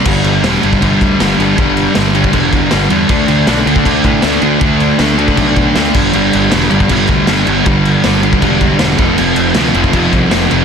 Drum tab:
CC |x-x-x-x-x-x-x-x-|x-x-x-x-x-x-x-x-|x-x-x-x-x-x-x-x-|x-x-x-x-x-x-x-x-|
SD |----o-------o---|----o-------o---|----o-------o---|----o-------o---|
BD |o------oo-o-----|o------oo-o-----|o------oo-o-----|o------oo-o---o-|

CC |x-x-x-x-x-x-x-x-|x-x-x-x-x-x-x-x-|x-x-x-x-x-x-x-x-|
SD |----o-------o---|----o-------o---|----o-------o---|
BD |-------oo-o-----|o------oo-o---o-|-------oo-o-----|